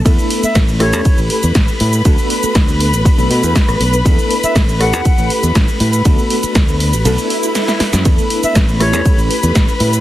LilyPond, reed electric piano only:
\new Staff \with { instrumentName = "Reed electric piano" } { \time 4/4 \key a \mixolydian \tempo 4 = 120 <a b d' e' a'>4. <a cis' e' g' a'>2~ <a cis' e' g' a'>8 | <a b d' fis' a'>2 <a b d' fis' a'>2 | <a b d' e' a'>4. <a cis' e' g' a'>2~ <a cis' e' g' a'>8 | <a b d' fis' a'>2 <a b d' fis' a'>2 |
<a b d' e' a'>4. <a cis' e' g' a'>2~ <a cis' e' g' a'>8 | }